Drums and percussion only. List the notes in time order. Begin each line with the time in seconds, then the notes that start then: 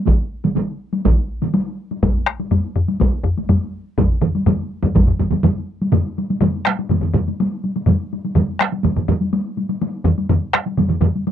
0.06 taiko, taiko mid, taiko high
0.44 taiko mid, taiko high
0.56 taiko mid, taiko high
0.93 taiko high
1.05 taiko, taiko mid, taiko high
1.42 taiko mid, taiko high
1.54 taiko high
1.91 taiko high
2.03 taiko, taiko low-mid, taiko high
2.26 taiko rim
2.40 taiko high
2.51 taiko low-mid, taiko high
2.76 taiko low-mid
2.88 taiko high
3.00 taiko, taiko high
3.24 taiko low-mid
3.37 taiko high
3.49 taiko low-mid, taiko high
3.98 taiko, taiko low-mid, taiko mid, taiko high
4.21 taiko low-mid, taiko mid
4.35 taiko high
4.46 taiko low-mid, taiko mid, taiko high
4.83 taiko low-mid, taiko mid, taiko high
4.95 taiko, taiko low-mid, taiko mid, taiko high
5.07 taiko low-mid, taiko mid
5.19 taiko low-mid, taiko mid, taiko high
5.31 taiko low-mid, taiko mid, taiko high
5.43 taiko low-mid, taiko mid, taiko high
5.82 taiko high
5.92 taiko low-mid, taiko mid, taiko high
6.18 taiko high
6.30 taiko high
6.41 taiko low-mid, taiko mid, taiko high
6.65 taiko rim
6.67 taiko rim, taiko high
6.79 taiko high
6.89 taiko low-mid, taiko mid, taiko high
7.01 taiko low-mid, taiko mid
7.14 taiko low-mid, taiko mid, taiko high
7.28 taiko high
7.40 taiko high
7.64 taiko high
7.76 taiko high
7.86 taiko low-mid, taiko mid, taiko high
8.13 taiko high
8.25 taiko high
8.35 taiko low-mid, taiko mid, taiko high
8.59 taiko rim, taiko high
8.73 taiko high
8.84 taiko low-mid, taiko mid, taiko high
8.96 taiko low-mid, taiko mid
9.08 taiko low-mid, taiko mid, taiko high
9.21 taiko high
9.33 taiko high
9.57 taiko high
9.69 taiko high
9.82 taiko high
10.05 taiko low-mid, taiko mid, taiko high
10.18 taiko high
10.29 taiko low-mid, taiko mid, taiko high
10.53 taiko rim, taiko high
10.67 taiko high
10.77 taiko low-mid, taiko mid, taiko high
10.89 taiko low-mid, taiko mid
11.01 taiko low-mid, taiko mid, taiko high
11.16 taiko high
11.27 taiko high